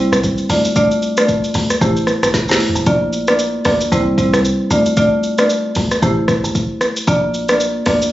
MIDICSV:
0, 0, Header, 1, 4, 480
1, 0, Start_track
1, 0, Tempo, 526316
1, 693, Time_signature, 4, 2, 24, 8
1, 7406, End_track
2, 0, Start_track
2, 0, Title_t, "Marimba"
2, 0, Program_c, 0, 12
2, 0, Note_on_c, 0, 55, 78
2, 0, Note_on_c, 0, 60, 71
2, 0, Note_on_c, 0, 64, 68
2, 0, Note_on_c, 0, 72, 86
2, 161, Note_off_c, 0, 55, 0
2, 162, Note_off_c, 0, 60, 0
2, 163, Note_off_c, 0, 64, 0
2, 164, Note_off_c, 0, 72, 0
2, 451, Note_on_c, 0, 57, 80
2, 453, Note_on_c, 0, 62, 71
2, 455, Note_on_c, 0, 65, 71
2, 457, Note_on_c, 0, 74, 89
2, 642, Note_off_c, 0, 57, 0
2, 643, Note_off_c, 0, 62, 0
2, 644, Note_off_c, 0, 65, 0
2, 645, Note_off_c, 0, 74, 0
2, 693, Note_on_c, 0, 57, 99
2, 694, Note_on_c, 0, 62, 85
2, 697, Note_on_c, 0, 65, 90
2, 698, Note_on_c, 0, 74, 106
2, 1039, Note_off_c, 0, 57, 0
2, 1040, Note_off_c, 0, 62, 0
2, 1041, Note_off_c, 0, 65, 0
2, 1042, Note_off_c, 0, 74, 0
2, 1071, Note_on_c, 0, 57, 79
2, 1072, Note_on_c, 0, 62, 67
2, 1074, Note_on_c, 0, 65, 74
2, 1075, Note_on_c, 0, 74, 87
2, 1242, Note_off_c, 0, 57, 0
2, 1243, Note_off_c, 0, 62, 0
2, 1244, Note_off_c, 0, 65, 0
2, 1244, Note_off_c, 0, 74, 0
2, 1650, Note_on_c, 0, 57, 95
2, 1652, Note_on_c, 0, 64, 83
2, 1654, Note_on_c, 0, 67, 85
2, 1656, Note_on_c, 0, 72, 108
2, 2215, Note_off_c, 0, 57, 0
2, 2216, Note_off_c, 0, 64, 0
2, 2217, Note_off_c, 0, 67, 0
2, 2218, Note_off_c, 0, 72, 0
2, 2271, Note_on_c, 0, 57, 79
2, 2272, Note_on_c, 0, 64, 74
2, 2274, Note_on_c, 0, 67, 73
2, 2276, Note_on_c, 0, 72, 87
2, 2442, Note_off_c, 0, 57, 0
2, 2443, Note_off_c, 0, 64, 0
2, 2444, Note_off_c, 0, 67, 0
2, 2445, Note_off_c, 0, 72, 0
2, 2612, Note_on_c, 0, 58, 91
2, 2613, Note_on_c, 0, 62, 90
2, 2616, Note_on_c, 0, 65, 87
2, 2618, Note_on_c, 0, 74, 104
2, 2959, Note_off_c, 0, 58, 0
2, 2959, Note_off_c, 0, 62, 0
2, 2960, Note_off_c, 0, 65, 0
2, 2962, Note_off_c, 0, 74, 0
2, 2993, Note_on_c, 0, 58, 76
2, 2995, Note_on_c, 0, 62, 71
2, 2997, Note_on_c, 0, 65, 71
2, 2998, Note_on_c, 0, 74, 85
2, 3163, Note_off_c, 0, 58, 0
2, 3164, Note_off_c, 0, 62, 0
2, 3165, Note_off_c, 0, 65, 0
2, 3166, Note_off_c, 0, 74, 0
2, 3331, Note_on_c, 0, 58, 76
2, 3334, Note_on_c, 0, 62, 71
2, 3334, Note_on_c, 0, 65, 69
2, 3338, Note_on_c, 0, 74, 86
2, 3522, Note_off_c, 0, 58, 0
2, 3524, Note_off_c, 0, 62, 0
2, 3524, Note_off_c, 0, 65, 0
2, 3525, Note_off_c, 0, 74, 0
2, 3572, Note_on_c, 0, 55, 93
2, 3574, Note_on_c, 0, 60, 83
2, 3575, Note_on_c, 0, 64, 87
2, 3578, Note_on_c, 0, 72, 102
2, 3797, Note_off_c, 0, 55, 0
2, 3798, Note_off_c, 0, 60, 0
2, 3798, Note_off_c, 0, 64, 0
2, 3799, Note_off_c, 0, 72, 0
2, 3811, Note_on_c, 0, 55, 75
2, 3814, Note_on_c, 0, 60, 69
2, 3815, Note_on_c, 0, 64, 69
2, 3816, Note_on_c, 0, 72, 87
2, 4002, Note_off_c, 0, 55, 0
2, 4003, Note_off_c, 0, 60, 0
2, 4004, Note_off_c, 0, 64, 0
2, 4004, Note_off_c, 0, 72, 0
2, 4292, Note_on_c, 0, 57, 81
2, 4294, Note_on_c, 0, 62, 77
2, 4295, Note_on_c, 0, 65, 73
2, 4298, Note_on_c, 0, 74, 92
2, 4482, Note_off_c, 0, 57, 0
2, 4483, Note_off_c, 0, 62, 0
2, 4484, Note_off_c, 0, 65, 0
2, 4485, Note_off_c, 0, 74, 0
2, 4531, Note_on_c, 0, 57, 94
2, 4533, Note_on_c, 0, 62, 87
2, 4536, Note_on_c, 0, 65, 91
2, 4537, Note_on_c, 0, 74, 106
2, 4878, Note_off_c, 0, 57, 0
2, 4879, Note_off_c, 0, 62, 0
2, 4880, Note_off_c, 0, 65, 0
2, 4881, Note_off_c, 0, 74, 0
2, 4912, Note_on_c, 0, 57, 78
2, 4913, Note_on_c, 0, 62, 72
2, 4916, Note_on_c, 0, 65, 70
2, 4917, Note_on_c, 0, 74, 88
2, 5083, Note_off_c, 0, 57, 0
2, 5083, Note_off_c, 0, 62, 0
2, 5085, Note_off_c, 0, 65, 0
2, 5085, Note_off_c, 0, 74, 0
2, 5492, Note_on_c, 0, 57, 97
2, 5493, Note_on_c, 0, 64, 89
2, 5495, Note_on_c, 0, 67, 85
2, 5497, Note_on_c, 0, 72, 102
2, 6388, Note_off_c, 0, 57, 0
2, 6389, Note_off_c, 0, 64, 0
2, 6390, Note_off_c, 0, 67, 0
2, 6391, Note_off_c, 0, 72, 0
2, 6451, Note_on_c, 0, 58, 92
2, 6453, Note_on_c, 0, 62, 88
2, 6455, Note_on_c, 0, 65, 87
2, 6458, Note_on_c, 0, 74, 107
2, 6798, Note_off_c, 0, 58, 0
2, 6799, Note_off_c, 0, 62, 0
2, 6800, Note_off_c, 0, 65, 0
2, 6801, Note_off_c, 0, 74, 0
2, 6832, Note_on_c, 0, 58, 76
2, 6834, Note_on_c, 0, 62, 68
2, 6836, Note_on_c, 0, 65, 71
2, 6837, Note_on_c, 0, 74, 82
2, 7003, Note_off_c, 0, 58, 0
2, 7004, Note_off_c, 0, 62, 0
2, 7005, Note_off_c, 0, 65, 0
2, 7005, Note_off_c, 0, 74, 0
2, 7172, Note_on_c, 0, 58, 76
2, 7173, Note_on_c, 0, 62, 70
2, 7176, Note_on_c, 0, 65, 71
2, 7177, Note_on_c, 0, 74, 89
2, 7362, Note_off_c, 0, 58, 0
2, 7363, Note_off_c, 0, 62, 0
2, 7364, Note_off_c, 0, 65, 0
2, 7365, Note_off_c, 0, 74, 0
2, 7406, End_track
3, 0, Start_track
3, 0, Title_t, "Log drum bass"
3, 0, Program_c, 1, 39
3, 111, Note_on_c, 1, 36, 75
3, 290, Note_off_c, 1, 36, 0
3, 453, Note_on_c, 1, 38, 101
3, 1091, Note_off_c, 1, 38, 0
3, 1413, Note_on_c, 1, 38, 97
3, 1591, Note_off_c, 1, 38, 0
3, 1654, Note_on_c, 1, 33, 108
3, 1935, Note_off_c, 1, 33, 0
3, 2033, Note_on_c, 1, 31, 93
3, 2108, Note_off_c, 1, 31, 0
3, 2272, Note_on_c, 1, 31, 93
3, 2347, Note_off_c, 1, 31, 0
3, 2511, Note_on_c, 1, 29, 99
3, 2587, Note_off_c, 1, 29, 0
3, 2613, Note_on_c, 1, 34, 112
3, 3202, Note_off_c, 1, 34, 0
3, 3335, Note_on_c, 1, 38, 97
3, 3513, Note_off_c, 1, 38, 0
3, 3575, Note_on_c, 1, 36, 107
3, 3856, Note_off_c, 1, 36, 0
3, 3953, Note_on_c, 1, 36, 76
3, 4131, Note_off_c, 1, 36, 0
3, 4292, Note_on_c, 1, 38, 100
3, 4931, Note_off_c, 1, 38, 0
3, 5256, Note_on_c, 1, 38, 89
3, 5433, Note_off_c, 1, 38, 0
3, 5495, Note_on_c, 1, 33, 114
3, 5776, Note_off_c, 1, 33, 0
3, 5873, Note_on_c, 1, 31, 89
3, 6051, Note_off_c, 1, 31, 0
3, 6454, Note_on_c, 1, 34, 117
3, 7042, Note_off_c, 1, 34, 0
3, 7176, Note_on_c, 1, 38, 94
3, 7353, Note_off_c, 1, 38, 0
3, 7406, End_track
4, 0, Start_track
4, 0, Title_t, "Drums"
4, 115, Note_on_c, 9, 37, 111
4, 117, Note_on_c, 9, 82, 83
4, 207, Note_off_c, 9, 37, 0
4, 208, Note_off_c, 9, 82, 0
4, 214, Note_on_c, 9, 36, 104
4, 216, Note_on_c, 9, 82, 72
4, 305, Note_off_c, 9, 36, 0
4, 307, Note_off_c, 9, 82, 0
4, 345, Note_on_c, 9, 82, 46
4, 436, Note_off_c, 9, 82, 0
4, 452, Note_on_c, 9, 46, 82
4, 452, Note_on_c, 9, 82, 58
4, 543, Note_off_c, 9, 46, 0
4, 543, Note_off_c, 9, 82, 0
4, 592, Note_on_c, 9, 82, 83
4, 683, Note_off_c, 9, 82, 0
4, 692, Note_on_c, 9, 82, 76
4, 693, Note_on_c, 9, 36, 116
4, 783, Note_off_c, 9, 82, 0
4, 784, Note_off_c, 9, 36, 0
4, 833, Note_on_c, 9, 82, 55
4, 925, Note_off_c, 9, 82, 0
4, 933, Note_on_c, 9, 82, 51
4, 1025, Note_off_c, 9, 82, 0
4, 1069, Note_on_c, 9, 82, 90
4, 1074, Note_on_c, 9, 37, 114
4, 1160, Note_off_c, 9, 82, 0
4, 1165, Note_off_c, 9, 37, 0
4, 1172, Note_on_c, 9, 82, 79
4, 1173, Note_on_c, 9, 36, 85
4, 1263, Note_off_c, 9, 82, 0
4, 1264, Note_off_c, 9, 36, 0
4, 1314, Note_on_c, 9, 82, 51
4, 1405, Note_off_c, 9, 82, 0
4, 1406, Note_on_c, 9, 46, 73
4, 1406, Note_on_c, 9, 82, 51
4, 1497, Note_off_c, 9, 46, 0
4, 1497, Note_off_c, 9, 82, 0
4, 1552, Note_on_c, 9, 82, 91
4, 1554, Note_on_c, 9, 37, 80
4, 1644, Note_off_c, 9, 82, 0
4, 1645, Note_off_c, 9, 37, 0
4, 1654, Note_on_c, 9, 36, 108
4, 1656, Note_on_c, 9, 82, 76
4, 1745, Note_off_c, 9, 36, 0
4, 1747, Note_off_c, 9, 82, 0
4, 1791, Note_on_c, 9, 82, 47
4, 1883, Note_off_c, 9, 82, 0
4, 1888, Note_on_c, 9, 37, 93
4, 1894, Note_on_c, 9, 82, 60
4, 1979, Note_off_c, 9, 37, 0
4, 1985, Note_off_c, 9, 82, 0
4, 2035, Note_on_c, 9, 37, 107
4, 2036, Note_on_c, 9, 82, 82
4, 2126, Note_off_c, 9, 37, 0
4, 2127, Note_off_c, 9, 82, 0
4, 2133, Note_on_c, 9, 38, 62
4, 2134, Note_on_c, 9, 36, 105
4, 2135, Note_on_c, 9, 82, 73
4, 2224, Note_off_c, 9, 38, 0
4, 2225, Note_off_c, 9, 36, 0
4, 2226, Note_off_c, 9, 82, 0
4, 2264, Note_on_c, 9, 82, 48
4, 2293, Note_on_c, 9, 38, 71
4, 2355, Note_off_c, 9, 82, 0
4, 2373, Note_on_c, 9, 46, 81
4, 2373, Note_on_c, 9, 82, 57
4, 2384, Note_off_c, 9, 38, 0
4, 2453, Note_on_c, 9, 43, 107
4, 2464, Note_off_c, 9, 46, 0
4, 2464, Note_off_c, 9, 82, 0
4, 2512, Note_on_c, 9, 82, 86
4, 2544, Note_off_c, 9, 43, 0
4, 2604, Note_off_c, 9, 82, 0
4, 2611, Note_on_c, 9, 82, 79
4, 2613, Note_on_c, 9, 36, 113
4, 2703, Note_off_c, 9, 82, 0
4, 2704, Note_off_c, 9, 36, 0
4, 2853, Note_on_c, 9, 82, 55
4, 2944, Note_off_c, 9, 82, 0
4, 2988, Note_on_c, 9, 82, 74
4, 2992, Note_on_c, 9, 37, 113
4, 3079, Note_off_c, 9, 82, 0
4, 3084, Note_off_c, 9, 37, 0
4, 3091, Note_on_c, 9, 82, 78
4, 3182, Note_off_c, 9, 82, 0
4, 3327, Note_on_c, 9, 46, 74
4, 3327, Note_on_c, 9, 82, 53
4, 3330, Note_on_c, 9, 37, 93
4, 3336, Note_on_c, 9, 36, 94
4, 3418, Note_off_c, 9, 46, 0
4, 3418, Note_off_c, 9, 82, 0
4, 3422, Note_off_c, 9, 37, 0
4, 3427, Note_off_c, 9, 36, 0
4, 3472, Note_on_c, 9, 82, 74
4, 3564, Note_off_c, 9, 82, 0
4, 3574, Note_on_c, 9, 36, 88
4, 3576, Note_on_c, 9, 82, 77
4, 3666, Note_off_c, 9, 36, 0
4, 3668, Note_off_c, 9, 82, 0
4, 3811, Note_on_c, 9, 36, 100
4, 3814, Note_on_c, 9, 82, 60
4, 3902, Note_off_c, 9, 36, 0
4, 3905, Note_off_c, 9, 82, 0
4, 3954, Note_on_c, 9, 37, 107
4, 3955, Note_on_c, 9, 82, 73
4, 4045, Note_off_c, 9, 37, 0
4, 4046, Note_off_c, 9, 82, 0
4, 4056, Note_on_c, 9, 82, 77
4, 4147, Note_off_c, 9, 82, 0
4, 4292, Note_on_c, 9, 82, 60
4, 4383, Note_off_c, 9, 82, 0
4, 4432, Note_on_c, 9, 82, 69
4, 4523, Note_off_c, 9, 82, 0
4, 4532, Note_on_c, 9, 82, 75
4, 4533, Note_on_c, 9, 36, 112
4, 4623, Note_off_c, 9, 82, 0
4, 4625, Note_off_c, 9, 36, 0
4, 4773, Note_on_c, 9, 82, 52
4, 4865, Note_off_c, 9, 82, 0
4, 4908, Note_on_c, 9, 82, 71
4, 4912, Note_on_c, 9, 37, 109
4, 4999, Note_off_c, 9, 82, 0
4, 5004, Note_off_c, 9, 37, 0
4, 5011, Note_on_c, 9, 82, 80
4, 5102, Note_off_c, 9, 82, 0
4, 5246, Note_on_c, 9, 46, 78
4, 5246, Note_on_c, 9, 82, 56
4, 5256, Note_on_c, 9, 36, 89
4, 5337, Note_off_c, 9, 46, 0
4, 5337, Note_off_c, 9, 82, 0
4, 5347, Note_off_c, 9, 36, 0
4, 5393, Note_on_c, 9, 82, 78
4, 5394, Note_on_c, 9, 37, 87
4, 5484, Note_off_c, 9, 82, 0
4, 5485, Note_off_c, 9, 37, 0
4, 5495, Note_on_c, 9, 36, 92
4, 5497, Note_on_c, 9, 82, 74
4, 5586, Note_off_c, 9, 36, 0
4, 5588, Note_off_c, 9, 82, 0
4, 5727, Note_on_c, 9, 37, 98
4, 5731, Note_on_c, 9, 36, 100
4, 5734, Note_on_c, 9, 82, 62
4, 5819, Note_off_c, 9, 37, 0
4, 5822, Note_off_c, 9, 36, 0
4, 5825, Note_off_c, 9, 82, 0
4, 5876, Note_on_c, 9, 82, 71
4, 5967, Note_off_c, 9, 82, 0
4, 5974, Note_on_c, 9, 36, 98
4, 5975, Note_on_c, 9, 82, 76
4, 6065, Note_off_c, 9, 36, 0
4, 6066, Note_off_c, 9, 82, 0
4, 6210, Note_on_c, 9, 37, 88
4, 6213, Note_on_c, 9, 82, 59
4, 6301, Note_off_c, 9, 37, 0
4, 6304, Note_off_c, 9, 82, 0
4, 6352, Note_on_c, 9, 82, 70
4, 6444, Note_off_c, 9, 82, 0
4, 6452, Note_on_c, 9, 82, 79
4, 6453, Note_on_c, 9, 36, 118
4, 6543, Note_off_c, 9, 82, 0
4, 6545, Note_off_c, 9, 36, 0
4, 6694, Note_on_c, 9, 82, 54
4, 6785, Note_off_c, 9, 82, 0
4, 6827, Note_on_c, 9, 82, 74
4, 6832, Note_on_c, 9, 37, 112
4, 6918, Note_off_c, 9, 82, 0
4, 6923, Note_off_c, 9, 37, 0
4, 6932, Note_on_c, 9, 82, 83
4, 7023, Note_off_c, 9, 82, 0
4, 7166, Note_on_c, 9, 46, 79
4, 7166, Note_on_c, 9, 82, 53
4, 7170, Note_on_c, 9, 37, 88
4, 7176, Note_on_c, 9, 36, 91
4, 7258, Note_off_c, 9, 46, 0
4, 7258, Note_off_c, 9, 82, 0
4, 7261, Note_off_c, 9, 37, 0
4, 7267, Note_off_c, 9, 36, 0
4, 7314, Note_on_c, 9, 82, 75
4, 7405, Note_off_c, 9, 82, 0
4, 7406, End_track
0, 0, End_of_file